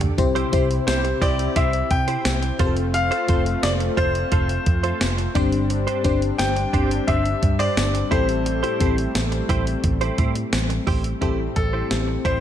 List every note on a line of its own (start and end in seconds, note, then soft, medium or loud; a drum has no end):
0.00 0.15 D3 medium
0.00 0.14 D4 medium
0.00 2.56 G4 medium
0.00 0.15 A4 medium
0.00 muted clean electric guitar stroke soft
0.00 closed hi-hat medium
0.00 floor tom medium
0.18 0.43 C2 loud
0.18 2.57 C3 medium
0.18 1.18 C3 medium
0.18 0.50 C4 medium
0.18 5.32 C4 medium
0.18 0.51 E4 medium
0.18 2.57 E4 medium
0.18 0.51 G4 medium
0.18 0.51 C5 medium
0.18 muted clean electric guitar stroke soft
0.18 kick medium
0.18 closed hi-hat medium
0.35 0.51 E4 medium
0.35 0.52 G4 medium
0.35 0.52 C5 medium
0.35 closed hi-hat medium
0.52 0.78 C2 loud
0.52 1.82 C4 medium
0.52 0.69 E4 medium
0.52 1.82 E4 medium
0.52 1.82 G4 medium
0.52 0.69 G4 medium
0.52 1.83 C5 loud
0.52 0.69 C5 medium
0.52 kick medium
0.52 closed hi-hat medium
0.70 muted clean electric guitar stroke soft
0.70 closed hi-hat soft
0.87 1.12 C2 loud
0.87 1.02 C4 loud
0.87 1.02 E4 loud
0.87 1.02 G4 loud
0.87 1.23 C5 medium
0.87 snare loud
0.87 closed hi-hat medium
0.87 tambourine medium
1.04 muted clean electric guitar stroke medium
1.04 closed hi-hat medium
1.22 1.47 C2 loud
1.22 1.51 C4 loud
1.22 1.42 E4 medium
1.22 1.51 E4 loud
1.22 1.51 G4 loud
1.22 1.38 G4 medium
1.22 1.38 C5 loud
1.22 1.57 D5 medium
1.22 kick medium
1.22 closed hi-hat medium
1.39 muted clean electric guitar stroke soft
1.39 closed hi-hat medium
1.56 1.81 C2 loud
1.56 1.76 E4 medium
1.56 1.73 G4 medium
1.56 1.72 C5 loud
1.56 1.92 E5 loud
1.56 kick medium
1.56 closed hi-hat medium
1.73 muted clean electric guitar stroke soft
1.73 closed hi-hat soft
1.91 2.16 C3 loud
1.91 2.56 G5 loud
1.91 muted clean electric guitar stroke soft
1.91 kick medium
1.91 closed hi-hat medium
2.08 2.24 E4 medium
2.08 2.24 G4 medium
2.08 2.24 C5 medium
2.08 closed hi-hat medium
2.25 2.50 C2 loud
2.25 snare loud
2.25 closed hi-hat medium
2.25 tambourine medium
2.42 muted clean electric guitar stroke soft
2.42 closed hi-hat medium
2.59 3.09 F1 loud
2.59 5.33 A3 medium
2.59 3.24 C4 medium
2.59 2.80 F4 medium
2.59 3.24 F4 medium
2.59 5.33 F4 medium
2.59 2.66 G4 medium
2.59 2.76 A4 medium
2.59 2.75 C5 medium
2.59 3.25 C5 medium
2.59 kick loud
2.59 closed hi-hat medium
2.66 3.28 A4 medium
2.77 muted clean electric guitar stroke soft
2.77 closed hi-hat medium
2.94 3.59 F5 loud
2.94 muted clean electric guitar stroke soft
2.94 closed hi-hat medium
3.11 3.27 F4 medium
3.11 3.28 A4 medium
3.11 3.28 C5 medium
3.11 closed hi-hat soft
3.28 3.54 F1 loud
3.28 4.58 C4 medium
3.28 3.44 F4 medium
3.28 4.58 F4 medium
3.28 3.45 A4 medium
3.28 4.58 A4 medium
3.28 3.45 C5 medium
3.28 4.58 C5 medium
3.28 kick medium
3.28 closed hi-hat medium
3.46 muted clean electric guitar stroke soft
3.46 closed hi-hat soft
3.63 3.88 F1 loud
3.63 3.71 D5 loud
3.63 snare loud
3.63 closed hi-hat medium
3.63 tambourine medium
3.80 muted clean electric guitar stroke medium
3.80 closed hi-hat medium
3.97 4.22 F1 loud
3.97 4.18 F4 medium
3.97 4.14 A4 loud
3.97 5.31 C5 medium
3.97 4.13 C5 loud
3.97 kick medium
3.97 closed hi-hat medium
4.15 muted clean electric guitar stroke medium
4.15 closed hi-hat medium
4.32 4.57 F1 loud
4.32 4.52 F4 medium
4.32 4.49 A4 medium
4.32 4.48 C5 medium
4.32 kick medium
4.32 closed hi-hat medium
4.49 muted clean electric guitar stroke soft
4.49 closed hi-hat soft
4.66 4.92 F2 medium
4.66 muted clean electric guitar stroke soft
4.66 kick medium
4.66 closed hi-hat medium
4.83 5.00 F4 medium
4.83 5.00 A4 medium
4.83 4.99 C5 medium
4.83 closed hi-hat medium
5.01 5.26 F1 loud
5.01 snare loud
5.01 closed hi-hat medium
5.01 tambourine medium
5.18 muted clean electric guitar stroke soft
5.18 closed hi-hat medium
5.35 5.85 G1 loud
5.35 6.35 G2 medium
5.35 11.18 G3 medium
5.35 6.00 C4 loud
5.35 6.00 D4 medium
5.35 5.56 D4 medium
5.35 6.00 G4 medium
5.35 5.52 G4 medium
5.35 6.01 C5 loud
5.35 5.51 C5 loud
5.35 kick loud
5.35 closed hi-hat medium
5.53 muted clean electric guitar stroke soft
5.53 closed hi-hat medium
5.70 muted clean electric guitar stroke soft
5.70 closed hi-hat medium
5.87 6.03 D4 medium
5.87 6.04 G4 medium
5.87 6.04 C5 medium
5.87 closed hi-hat medium
6.04 6.30 G1 loud
6.04 7.34 C4 medium
6.04 6.20 D4 medium
6.04 7.34 D4 medium
6.04 6.21 G4 medium
6.04 7.34 G4 medium
6.04 7.34 C5 medium
6.04 6.20 C5 medium
6.04 kick medium
6.04 closed hi-hat medium
6.21 muted clean electric guitar stroke soft
6.21 closed hi-hat soft
6.38 6.64 G1 loud
6.38 6.54 C4 loud
6.38 6.54 D4 loud
6.38 6.54 G4 loud
6.38 7.10 G5 loud
6.38 snare loud
6.38 closed hi-hat medium
6.38 tambourine medium
6.56 muted clean electric guitar stroke medium
6.56 closed hi-hat medium
6.73 6.98 G1 loud
6.73 7.03 C4 loud
6.73 6.94 D4 medium
6.73 7.03 D4 loud
6.73 6.90 G4 medium
6.73 7.03 G4 loud
6.73 6.89 C5 medium
6.73 kick medium
6.73 closed hi-hat medium
6.90 muted clean electric guitar stroke medium
6.90 closed hi-hat medium
7.07 7.33 G1 loud
7.07 7.28 D4 medium
7.07 7.24 G4 medium
7.07 7.24 C5 medium
7.07 7.61 E5 loud
7.07 kick medium
7.07 closed hi-hat medium
7.25 muted clean electric guitar stroke medium
7.25 closed hi-hat soft
7.42 7.68 G2 loud
7.42 muted clean electric guitar stroke soft
7.42 kick medium
7.42 closed hi-hat medium
7.59 7.76 D4 medium
7.59 7.76 G4 medium
7.59 7.75 C5 medium
7.59 8.13 D5 loud
7.59 closed hi-hat medium
7.77 8.02 G1 loud
7.77 snare loud
7.77 closed hi-hat medium
7.77 tambourine medium
7.94 muted clean electric guitar stroke soft
7.94 closed hi-hat medium
8.11 8.61 A1 loud
8.11 9.11 A2 medium
8.11 11.19 A3 medium
8.11 8.76 C4 medium
8.11 8.32 E4 medium
8.11 8.76 E4 medium
8.11 8.28 G4 medium
8.11 8.76 G4 medium
8.11 8.77 A4 medium
8.11 10.14 C5 medium
8.11 8.27 C5 medium
8.11 kick loud
8.11 closed hi-hat medium
8.28 muted clean electric guitar stroke soft
8.28 closed hi-hat medium
8.46 muted clean electric guitar stroke soft
8.46 closed hi-hat medium
8.63 8.79 E4 medium
8.63 8.79 G4 medium
8.63 8.80 C5 medium
8.63 closed hi-hat soft
8.80 9.06 A1 medium
8.80 10.10 C4 medium
8.80 8.96 E4 medium
8.80 10.10 E4 medium
8.80 8.96 G4 medium
8.80 10.10 G4 medium
8.80 10.10 A4 medium
8.80 8.96 C5 medium
8.80 kick medium
8.80 closed hi-hat medium
8.97 muted clean electric guitar stroke medium
8.97 closed hi-hat soft
9.15 9.40 A1 loud
9.15 snare loud
9.15 closed hi-hat medium
9.15 tambourine medium
9.32 muted clean electric guitar stroke soft
9.32 closed hi-hat medium
9.49 9.74 A1 loud
9.49 9.70 E4 medium
9.49 9.66 G4 loud
9.49 9.65 C5 loud
9.49 kick medium
9.49 closed hi-hat medium
9.66 muted clean electric guitar stroke soft
9.66 closed hi-hat medium
9.84 10.09 A1 loud
9.84 muted clean electric guitar stroke soft
9.84 kick medium
9.84 closed hi-hat medium
10.01 10.17 E4 medium
10.01 10.18 G4 medium
10.01 10.18 C5 medium
10.01 closed hi-hat soft
10.18 10.43 A2 medium
10.18 10.34 E4 medium
10.18 10.34 G4 medium
10.18 10.34 C5 medium
10.18 kick medium
10.18 closed hi-hat medium
10.35 muted clean electric guitar stroke medium
10.35 closed hi-hat medium
10.53 10.78 A1 loud
10.53 snare loud
10.53 closed hi-hat medium
10.53 tambourine medium
10.70 muted clean electric guitar stroke soft
10.70 closed hi-hat medium
10.87 11.12 A1 loud
10.87 11.07 E4 medium
10.87 11.04 G4 medium
10.87 11.03 C5 medium
10.87 kick loud
10.87 open hi-hat medium
11.04 muted clean electric guitar stroke soft
11.04 closed hi-hat medium
11.21 11.47 A1 loud
11.21 12.21 A2 medium
11.21 12.40 G3 medium
11.21 12.40 C4 medium
11.21 11.42 E4 medium
11.21 12.40 E4 medium
11.21 12.40 G4 medium
11.21 11.38 G4 medium
11.21 12.40 A4 medium
11.21 11.38 C5 medium
11.21 kick medium
11.21 closed hi-hat medium
11.39 muted clean electric guitar stroke soft
11.56 11.81 A1 loud
11.56 12.27 A4 medium
11.56 muted clean electric guitar stroke soft
11.56 kick medium
11.56 closed hi-hat medium
11.73 11.90 E4 soft
11.73 11.89 G4 soft
11.73 11.89 C5 medium
11.91 12.16 A1 loud
11.91 snare loud
11.91 closed hi-hat medium
12.08 muted clean electric guitar stroke soft
12.25 12.40 A1 medium
12.25 12.40 E4 medium
12.25 12.40 G4 medium
12.25 12.40 C5 medium
12.25 kick medium
12.25 closed hi-hat medium